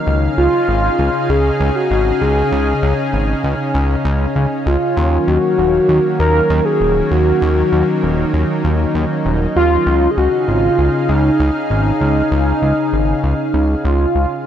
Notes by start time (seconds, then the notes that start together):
Already playing: D#4 F5
0.07 C#2 C#3 C#4 D#4 G#4
0.38 C#2 F4
0.68 G#1
0.99 C#2
1.29 C#2 G#4
1.60 C#2
1.76 F#4
1.91 G#1
2.21 C#2 G#4
2.52 C#2
2.83 C#2
3.13 G#1
3.44 C#2
3.74 C#2
4.05 C#2
4.36 C#2
4.66 C#2 F4
4.97 D#2 D#3 F#3 A#3
5.28 D#2 F#4
5.58 D#1
5.89 D#2
6.20 D#2 A#4
6.50 D#2
6.65 G#4
6.81 D#1
7.11 D#2 F#4
7.42 D#2 D#4
7.72 D#2
8.03 D#1
8.34 D#2
8.64 D#2
8.95 D#2
9.25 D#1
9.56 D#2 F4
9.86 C#2 C#3 G#4 F5
10.11 G#4
10.17 C#2 F#4
10.48 G#1 F4
10.78 C#2
11.09 C#2 D#4
11.40 C#2
11.70 G#1
12.01 C#2
12.31 C#2
12.62 C#2
12.93 G#1
13.23 C#2
13.54 C#2
13.85 C#2 F4
14.15 C#2